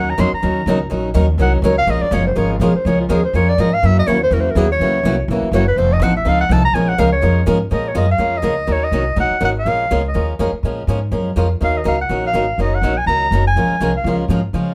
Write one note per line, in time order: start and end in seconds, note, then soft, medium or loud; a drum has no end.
0.00 0.17 D#2 medium
0.00 0.12 D#3 medium
0.00 0.12 F#3 medium
0.00 0.12 C#4 medium
0.00 0.12 D#4 medium
0.00 0.13 A#4 medium
0.00 0.11 F#5 medium
0.10 0.22 A#5 medium
0.18 0.31 F2 medium
0.18 0.28 D#3 medium
0.18 0.29 F#3 loud
0.18 0.29 C#4 medium
0.18 0.29 D#4 loud
0.18 0.29 A#4 medium
0.18 0.33 C6 medium
0.33 0.88 A#5 medium
0.33 muted upright bass stroke soft
0.42 0.65 D#2 medium
0.42 0.60 D#3 medium
0.42 0.61 F#3 medium
0.42 0.61 C#4 medium
0.42 0.61 D#4 medium
0.42 0.61 A#4 medium
0.66 0.90 C#2 medium
0.66 0.77 D#3 medium
0.66 0.77 F#3 medium
0.66 0.78 C#4 medium
0.66 0.78 D#4 loud
0.66 0.78 A#4 loud
0.90 1.14 A#1 medium
0.90 1.08 D#3 medium
0.90 1.09 F#3 medium
0.90 1.09 C#4 medium
0.90 1.09 D#4 medium
0.90 1.09 A#4 medium
1.14 1.37 D#2 loud
1.14 1.25 D#3 medium
1.14 1.25 F#3 medium
1.14 1.25 C#4 loud
1.14 1.25 D#4 medium
1.14 1.25 A#4 loud
1.38 1.61 C2 medium
1.38 1.57 D#3 medium
1.38 1.57 F#3 medium
1.38 1.58 C#4 medium
1.38 1.58 D#4 medium
1.38 1.58 A#4 medium
1.42 1.54 F#5 medium
1.55 1.66 A#4 soft
1.62 1.86 C#2 loud
1.62 1.74 D#3 medium
1.62 1.74 F#3 medium
1.62 1.74 C#4 medium
1.62 1.74 D#4 medium
1.62 1.75 A#4 loud
1.62 1.78 C#5 medium
1.78 1.92 F5 loud
1.86 2.00 A#1 medium
1.86 2.06 F3 medium
1.86 2.06 G#3 medium
1.86 2.06 C#4 medium
1.86 2.06 F4 medium
1.86 2.06 A#4 medium
1.86 2.04 D#5 loud
2.02 2.15 D5 loud
2.02 muted upright bass stroke soft
2.11 2.35 F#1 loud
2.11 2.22 F3 loud
2.11 2.23 G#3 medium
2.11 2.23 C#4 medium
2.11 2.23 F4 loud
2.11 2.23 A#4 loud
2.11 2.26 C#5 medium
2.27 2.39 C5 medium
2.35 2.59 G#1 medium
2.35 2.54 F3 medium
2.35 2.54 G#3 medium
2.35 2.54 C#4 medium
2.35 2.55 F4 medium
2.35 2.54 A#4 medium
2.35 2.51 C#5 medium
2.53 2.64 F4 medium
2.60 2.73 A#1 loud
2.60 2.71 F3 loud
2.60 2.71 G#3 medium
2.60 2.72 C#4 medium
2.60 2.72 F4 loud
2.60 2.75 G#4 medium
2.60 2.72 A#4 medium
2.74 2.88 C5 medium
2.74 muted upright bass stroke soft
2.85 3.08 C#2 medium
2.85 3.04 F3 medium
2.85 3.04 G#3 medium
2.85 3.04 C#4 medium
2.85 3.04 F4 medium
2.85 3.04 A#4 medium
2.85 3.00 C#5 loud
3.01 3.13 F4 medium
3.09 3.33 D#2 medium
3.09 3.20 F3 medium
3.09 3.20 G#3 loud
3.09 3.20 C#4 medium
3.09 3.20 F4 loud
3.09 3.24 G#4 medium
3.09 3.20 A#4 loud
3.25 3.37 C5 medium
3.33 3.57 F2 medium
3.33 3.52 F3 medium
3.33 3.52 G#3 medium
3.33 3.52 C#4 medium
3.33 3.53 F4 medium
3.33 3.53 A#4 medium
3.33 3.50 C#5 medium
3.49 3.62 D5 medium
3.58 3.82 G#2 medium
3.58 3.69 F3 medium
3.58 3.68 G#3 medium
3.58 3.69 C#4 medium
3.58 3.69 F4 medium
3.58 3.69 A#4 medium
3.58 3.75 D#5 medium
3.74 3.87 F5 loud
3.83 4.06 F#2 medium
3.83 4.01 C#3 medium
3.83 4.01 E3 medium
3.83 4.01 F#3 medium
3.83 4.01 A#3 medium
3.83 4.01 C#4 medium
3.83 4.01 E4 medium
3.83 4.01 F#4 medium
3.83 4.02 A#4 medium
3.83 3.98 E5 loud
3.99 4.09 D#5 medium
4.06 4.30 D#2 medium
4.06 4.17 C#3 medium
4.06 4.17 E3 medium
4.06 4.17 F#3 medium
4.06 4.17 A#3 loud
4.06 4.18 C#4 loud
4.06 4.18 E4 medium
4.06 4.18 F#4 loud
4.06 4.18 A#4 medium
4.06 4.21 C#5 medium
4.23 4.35 C5 medium
4.31 4.54 E2 loud
4.31 4.49 C#3 medium
4.31 4.50 E3 medium
4.31 4.50 F#3 medium
4.31 4.50 A#3 medium
4.31 4.50 C#4 medium
4.31 4.50 E4 medium
4.31 4.50 F#4 medium
4.31 4.42 A#4 medium
4.31 4.50 A#4 medium
4.41 4.52 C5 medium
4.51 4.59 A#4 medium
4.55 4.79 D#2 medium
4.55 4.66 C#3 medium
4.55 4.66 E3 medium
4.55 4.66 F#3 medium
4.55 4.66 A#3 medium
4.55 4.66 C#4 loud
4.55 4.66 E4 loud
4.55 4.66 F#4 loud
4.55 4.70 G#4 medium
4.55 4.66 A#4 medium
4.72 5.26 C#5 medium
4.80 5.03 C#2 medium
4.80 4.98 C#3 medium
4.80 4.98 E3 medium
4.80 4.98 F#3 medium
4.80 4.99 A#3 medium
4.80 4.98 C#4 medium
4.80 4.98 E4 medium
4.80 4.98 F#4 medium
4.80 4.98 A#4 medium
5.03 5.27 C2 medium
5.03 5.15 C#3 loud
5.03 5.15 E3 medium
5.03 5.14 F#3 medium
5.03 5.15 A#3 loud
5.03 5.15 C#4 loud
5.03 5.14 E4 loud
5.03 5.15 F#4 loud
5.03 5.15 A#4 loud
5.28 5.41 A#1 medium
5.28 5.47 C#3 medium
5.28 5.47 E3 medium
5.28 5.46 F#3 medium
5.28 5.48 A#3 medium
5.28 5.48 C#4 medium
5.28 5.47 E4 medium
5.28 5.48 F#4 medium
5.28 5.47 A#4 medium
5.42 muted upright bass stroke soft
5.52 5.76 F#1 medium
5.52 5.63 C#3 loud
5.52 5.63 E3 loud
5.52 5.63 F#3 medium
5.52 5.63 A#3 medium
5.52 5.63 C#4 medium
5.52 5.63 E4 medium
5.52 5.63 F#4 loud
5.52 5.63 A#4 loud
5.52 5.67 C#5 medium
5.68 5.79 B4 medium
5.76 5.99 F1 medium
5.76 5.95 F3 medium
5.76 5.95 C4 medium
5.76 5.95 D#4 medium
5.76 5.95 A4 medium
5.76 5.95 C5 medium
5.93 6.04 D#5 medium
6.00 6.24 A1 loud
6.00 6.12 F3 loud
6.00 6.12 C4 loud
6.00 6.12 D#4 loud
6.00 6.12 A4 loud
6.00 6.16 F#5 medium
6.17 6.30 E5 medium
6.25 6.49 C#2 medium
6.25 6.43 F3 medium
6.25 6.43 C4 medium
6.25 6.43 D#4 medium
6.25 6.44 A4 medium
6.25 6.40 F5 medium
6.41 6.54 F#5 medium
6.49 6.72 C2 loud
6.49 6.60 F3 loud
6.49 6.61 C4 medium
6.49 6.61 D#4 medium
6.49 6.61 A4 loud
6.49 6.64 A5 medium
6.65 6.76 A#5 loud
6.73 6.97 A#1 medium
6.73 6.92 F3 medium
6.73 6.92 G#3 medium
6.73 6.93 C#4 medium
6.73 6.93 F4 medium
6.73 6.93 A#4 medium
6.73 6.90 G#5 medium
6.89 7.00 F#5 loud
6.98 7.22 C#2 medium
6.98 7.08 F3 loud
6.98 7.09 G#3 loud
6.98 7.08 C#4 loud
6.98 7.09 F4 loud
6.98 7.09 A#4 loud
6.98 7.12 F5 medium
7.13 7.45 C#5 medium
7.22 7.46 F2 medium
7.22 7.40 F3 medium
7.22 7.40 G#3 medium
7.22 7.40 C#4 medium
7.22 7.40 F4 medium
7.22 7.41 A#4 medium
7.46 7.70 G#2 loud
7.46 7.57 F3 medium
7.46 7.57 G#3 medium
7.46 7.57 C#4 loud
7.46 7.57 F4 loud
7.46 7.57 A#4 loud
7.71 7.94 A#2 medium
7.71 7.89 F3 medium
7.71 7.89 G#3 medium
7.71 7.89 C#4 medium
7.71 7.89 F4 medium
7.71 7.89 A#4 medium
7.71 7.89 D#5 medium
7.88 7.97 C#5 medium
7.95 8.18 F#2 medium
7.95 8.05 F3 medium
7.95 8.05 G#3 medium
7.95 8.05 C#4 medium
7.95 8.06 F4 loud
7.95 8.06 A#4 loud
7.95 8.10 D#5 medium
8.11 8.39 F5 medium
8.18 8.42 F2 medium
8.18 8.37 F3 medium
8.18 8.37 G#3 medium
8.18 8.37 C#4 medium
8.18 8.38 F4 medium
8.18 8.38 A#4 medium
8.37 8.74 D#5 medium
8.42 8.67 C#2 medium
8.42 8.53 F3 medium
8.42 8.54 G#3 medium
8.42 8.54 C#4 medium
8.42 8.54 F4 medium
8.42 8.54 A#4 loud
8.67 8.91 D#2 medium
8.67 8.86 D#3 medium
8.67 8.86 F#3 medium
8.67 8.86 C#4 medium
8.67 8.86 D#4 medium
8.67 8.86 A#4 medium
8.72 8.85 C#5 medium
8.84 9.18 D#5 medium
8.91 9.16 C2 medium
8.91 9.03 D#3 medium
8.91 9.03 F#3 medium
8.91 9.03 C#4 medium
8.91 9.03 D#4 medium
8.91 9.03 A#4 medium
9.16 9.29 A#1 medium
9.16 9.35 D#3 medium
9.16 9.35 F#3 medium
9.16 9.35 C#4 medium
9.16 9.35 D#4 medium
9.16 9.35 A#4 medium
9.20 9.42 F#5 loud
9.30 muted upright bass stroke soft
9.40 9.65 G#1 medium
9.40 9.51 D#3 medium
9.40 9.51 F#3 medium
9.40 9.51 C#4 medium
9.40 9.52 D#4 medium
9.40 9.52 A#4 medium
9.45 9.50 F#5 medium
9.60 10.03 F5 medium
9.65 9.89 A#1 medium
9.65 9.84 F3 medium
9.65 9.84 G#3 medium
9.65 9.84 C#4 medium
9.65 9.84 F4 medium
9.65 9.84 A#4 medium
9.91 10.14 C#2 medium
9.91 10.01 F3 medium
9.91 10.01 G#3 medium
9.91 10.01 C#4 medium
9.91 10.01 F4 medium
9.91 10.01 A#4 medium
10.08 10.29 D#5 medium
10.14 10.38 D#2 medium
10.14 10.32 F3 medium
10.14 10.32 G#3 medium
10.14 10.33 C#4 medium
10.14 10.33 F4 medium
10.14 10.33 A#4 medium
10.39 10.52 F2 medium
10.39 10.49 F3 medium
10.39 10.50 G#3 medium
10.39 10.50 C#4 medium
10.39 10.50 F4 medium
10.39 10.50 A#4 loud
10.52 muted upright bass stroke soft
10.63 10.87 A#2 medium
10.63 10.82 F3 medium
10.63 10.82 G#3 medium
10.63 10.82 C#4 medium
10.63 10.82 F4 medium
10.63 10.82 A#4 medium
10.87 11.11 G#2 medium
10.87 10.98 F3 medium
10.87 10.98 G#3 medium
10.87 10.98 C#4 medium
10.87 10.99 F4 medium
10.87 10.99 A#4 medium
11.11 11.35 F#2 medium
11.11 11.30 F3 medium
11.11 11.30 G#3 medium
11.11 11.30 C#4 medium
11.11 11.30 F4 medium
11.11 11.30 A#4 medium
11.36 11.60 F2 medium
11.36 11.46 F3 medium
11.36 11.47 G#3 medium
11.36 11.47 C#4 medium
11.36 11.47 F4 medium
11.36 11.47 A#4 loud
11.61 11.85 D#2 medium
11.61 11.79 D#3 medium
11.61 11.79 F#3 medium
11.61 11.79 C#4 medium
11.61 11.79 D#4 medium
11.61 11.80 A#4 medium
11.61 11.79 F5 medium
11.77 11.87 D#5 medium
11.84 12.09 C#2 medium
11.84 11.95 D#3 medium
11.84 11.95 F#3 medium
11.84 11.95 C#4 medium
11.84 11.95 D#4 medium
11.84 11.95 A#4 medium
11.84 11.99 F5 medium
12.01 12.23 F#5 medium
12.09 12.33 A#1 medium
12.09 12.27 D#3 medium
12.09 12.27 F#3 medium
12.09 12.28 C#4 medium
12.09 12.28 D#4 medium
12.09 12.28 A#4 medium
12.27 12.58 F5 medium
12.33 12.57 G#1 medium
12.33 12.44 D#3 medium
12.33 12.44 F#3 medium
12.33 12.44 C#4 medium
12.33 12.45 D#4 medium
12.33 12.45 A#4 medium
12.58 12.81 F#1 medium
12.58 12.76 D#3 medium
12.58 12.77 F#3 medium
12.58 12.77 C#4 medium
12.58 12.77 D#4 medium
12.58 12.77 A#4 medium
12.58 12.76 D#5 medium
12.75 12.99 F#5 medium
12.82 13.06 A#1 medium
12.82 12.93 D#3 medium
12.82 12.93 F#3 medium
12.82 12.93 C#4 medium
12.82 12.94 D#4 medium
12.82 12.94 A#4 medium
12.98 13.06 G#5 medium
13.06 13.30 C#2 medium
13.06 13.25 D#3 medium
13.06 13.26 F#3 medium
13.06 13.26 C#4 medium
13.06 13.26 D#4 medium
13.06 13.26 A#4 medium
13.06 13.42 A#5 loud
13.31 13.55 F#1 medium
13.31 13.42 D#3 medium
13.31 13.43 F#3 medium
13.31 13.43 C#4 medium
13.31 13.42 D#4 medium
13.31 13.43 A#4 medium
13.47 13.92 G#5 loud
13.56 13.68 A#1 medium
13.56 13.74 F3 medium
13.56 13.74 G#3 medium
13.56 13.74 C#4 medium
13.56 13.75 F4 medium
13.56 13.75 A#4 medium
13.69 muted upright bass stroke soft
13.80 14.03 C2 medium
13.80 13.91 F3 medium
13.80 13.91 G#3 medium
13.80 13.91 C#4 medium
13.80 13.91 F4 medium
13.80 13.91 A#4 medium
13.97 14.18 F5 medium
14.04 14.28 C#2 medium
14.04 14.23 F3 medium
14.04 14.24 G#3 medium
14.04 14.24 C#4 medium
14.04 14.24 F4 medium
14.04 14.24 A#4 medium
14.28 14.52 G#2 medium
14.28 14.39 F3 medium
14.28 14.40 G#3 medium
14.28 14.40 C#4 medium
14.28 14.40 F4 medium
14.28 14.40 A#4 medium
14.53 14.74 C#3 medium
14.53 14.71 F3 medium
14.53 14.72 G#3 medium
14.53 14.72 C#4 medium
14.53 14.72 F4 medium
14.53 14.72 A#4 medium